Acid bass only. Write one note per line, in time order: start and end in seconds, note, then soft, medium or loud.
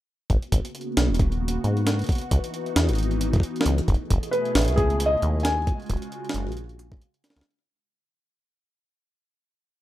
0.30 0.38 G#1 loud
0.52 0.61 G#1 medium
0.97 1.11 B1 loud
1.10 1.59 D#1 medium
1.64 2.04 G#2 medium
2.31 2.40 C#2 medium
2.76 2.90 E2 loud
2.89 3.38 G#1 medium
3.66 3.81 C#2 medium
3.88 3.96 F#1 medium
4.10 4.19 F#1 medium
4.55 4.69 A1 loud
4.68 5.17 C#2 medium
5.22 5.73 D#2 medium
5.90 5.98 D#1 medium
6.34 6.48 F#1 loud
6.47 6.96 A#1 medium
7.36 7.43 C#2 medium